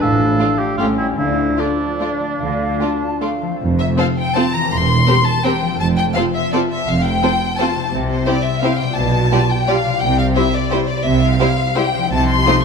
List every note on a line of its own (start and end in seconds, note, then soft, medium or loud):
0.00 0.33 A1 medium
0.00 0.78 A2 medium
0.00 0.33 A2 medium
0.00 0.79 F3 medium
0.00 0.62 D4 medium
0.00 0.76 D4 medium
0.00 0.60 A4 medium
0.00 0.81 F5 medium
0.20 0.58 A3 soft
0.39 0.48 A3 soft
0.39 0.47 F4 soft
0.39 0.81 F4 soft
0.39 0.49 D5 soft
0.59 1.36 A3 soft
0.59 0.77 G4 medium
0.77 1.12 A1 soft
0.77 1.20 A2 soft
0.77 1.12 A2 soft
0.77 1.18 G3 soft
0.77 0.87 A3 soft
0.77 1.18 C#4 soft
0.77 1.21 C#4 soft
0.77 0.87 F4 medium
0.77 0.88 G4 soft
0.77 0.89 C#5 soft
0.77 1.17 G5 soft
0.98 1.07 E4 medium
0.98 1.20 G4 soft
0.98 1.99 A4 soft
1.18 1.52 D2 medium
1.18 2.39 D3 soft
1.18 1.52 D3 medium
1.18 3.42 F3 soft
1.18 3.38 D4 soft
1.18 3.43 D4 soft
1.18 1.61 E4 medium
1.18 1.54 F5 soft
1.37 1.78 A3 soft
1.58 1.66 A3 soft
1.58 3.42 D4 medium
1.58 1.66 F4 soft
1.58 2.80 F4 soft
1.58 2.41 D5 soft
1.58 1.68 D5 soft
1.79 2.19 A3 soft
2.00 2.08 A3 soft
2.00 2.08 F4 soft
2.00 3.21 A4 soft
2.00 2.10 D5 soft
2.20 3.01 A3 soft
2.40 2.74 D2 medium
2.40 3.62 D3 soft
2.40 2.74 D3 medium
2.40 2.82 F5 medium
2.60 3.62 D4 soft
2.81 2.89 A3 soft
2.81 2.89 F4 soft
2.81 3.50 F4 soft
2.81 2.90 D5 soft
2.81 3.22 A5 soft
3.02 3.41 A3 soft
3.21 3.29 A3 soft
3.21 3.30 F4 soft
3.21 3.55 A4 soft
3.21 3.31 D5 soft
3.21 3.61 F5 soft
3.42 4.63 F3 medium
3.42 4.72 A3 soft
3.47 4.56 C4 soft
3.51 4.68 F4 soft
3.56 4.70 A4 soft
3.61 3.91 F1 medium
3.61 3.92 F2 medium
3.80 3.87 E5 medium
3.98 4.06 C4 medium
3.98 4.06 F4 medium
3.98 4.06 A4 medium
3.98 4.06 C5 medium
3.98 4.07 F5 medium
4.18 4.36 G5 medium
4.35 4.44 C4 medium
4.35 4.44 F4 medium
4.35 4.43 A4 medium
4.35 4.43 C5 medium
4.35 4.54 A5 medium
4.53 5.72 E3 medium
4.53 4.71 A#5 medium
4.58 5.65 C4 soft
4.62 5.77 G4 soft
4.67 5.01 E1 medium
4.67 5.79 A#4 soft
4.71 5.01 E2 medium
4.71 5.26 C6 medium
5.07 5.16 C4 soft
5.07 5.16 G4 medium
5.07 5.15 A#4 medium
5.07 5.15 C5 medium
5.25 5.44 A5 medium
5.44 5.53 C4 medium
5.44 5.53 G4 medium
5.44 5.52 A#4 medium
5.44 5.52 C5 medium
5.44 5.80 G5 medium
5.62 7.86 F3 medium
5.66 7.78 C4 soft
5.71 7.90 F4 soft
5.75 6.09 F1 medium
5.75 7.92 A4 soft
5.79 6.09 F2 medium
5.79 5.86 A5 medium
5.98 6.05 G5 medium
6.15 6.23 C4 soft
6.15 6.23 F4 medium
6.15 6.23 A4 soft
6.15 6.24 C5 medium
6.15 6.22 F5 medium
6.35 6.53 E5 medium
6.52 6.61 C4 soft
6.52 6.61 F4 soft
6.52 6.61 A4 medium
6.52 6.60 C5 medium
6.52 6.60 D5 medium
6.71 6.88 E5 medium
6.88 7.17 F1 medium
6.88 7.17 F2 medium
6.88 7.05 F5 medium
7.05 7.60 G5 medium
7.23 7.31 C4 soft
7.23 7.31 F4 medium
7.23 7.31 A4 medium
7.23 7.31 C5 medium
7.59 7.68 C4 soft
7.59 7.68 F4 medium
7.59 7.67 A4 medium
7.59 7.67 C5 medium
7.59 7.93 A5 medium
7.75 8.91 C3 medium
7.80 8.93 C4 soft
7.84 8.95 E4 soft
7.89 8.92 G4 soft
7.93 8.22 C2 medium
7.93 8.22 C3 medium
8.09 8.26 C5 medium
8.27 8.35 C4 soft
8.27 8.36 E4 soft
8.27 8.35 G4 soft
8.27 8.35 C5 soft
8.27 8.46 D5 medium
8.45 8.64 E5 medium
8.63 8.72 C4 medium
8.63 8.72 E4 medium
8.63 8.71 G4 soft
8.63 8.71 C5 medium
8.63 8.81 F5 medium
8.79 9.95 B2 medium
8.79 8.97 G5 medium
8.84 9.88 G3 soft
8.89 9.99 F4 soft
8.93 9.97 G4 soft
8.98 9.27 B1 medium
8.98 9.27 B2 medium
8.98 9.51 A5 medium
9.32 9.40 G3 soft
9.32 9.40 F4 soft
9.32 9.40 G4 medium
9.32 9.40 D5 medium
9.51 9.69 G5 medium
9.67 9.76 G3 medium
9.67 9.76 F4 medium
9.67 9.75 G4 soft
9.67 9.76 D5 medium
9.67 10.03 F5 medium
9.84 11.93 C3 medium
9.89 12.06 G3 soft
9.93 12.08 E4 soft
9.98 12.10 G4 soft
9.98 10.19 G5 medium
10.03 10.31 C2 medium
10.03 10.31 C3 medium
10.18 10.25 F5 medium
10.35 10.45 G3 soft
10.35 10.45 E4 soft
10.35 10.43 G4 medium
10.35 10.43 C5 medium
10.35 10.54 E5 medium
10.55 10.72 D5 medium
10.71 10.79 G3 soft
10.71 10.80 E4 soft
10.71 10.79 G4 soft
10.71 10.79 C5 medium
10.71 10.89 C5 medium
10.89 11.06 D5 medium
11.05 11.34 C2 medium
11.05 11.34 C3 medium
11.05 11.22 E5 medium
11.23 11.77 F5 medium
11.40 11.48 G3 soft
11.40 11.48 E4 medium
11.40 11.48 G4 medium
11.40 11.48 C5 medium
11.76 11.85 G3 medium
11.76 11.85 E4 medium
11.76 11.84 G4 medium
11.76 11.84 C5 medium
11.76 12.11 G5 medium
11.94 12.65 C3 medium
11.98 12.65 F3 soft
12.03 12.65 D#4 soft
12.07 12.65 A4 soft
12.12 12.40 C2 medium
12.12 12.40 C3 medium
12.12 12.28 A5 medium
12.29 12.64 C6 medium
12.47 12.55 A3 medium
12.47 12.55 D#4 soft
12.47 12.55 F4 medium
12.47 12.55 C5 medium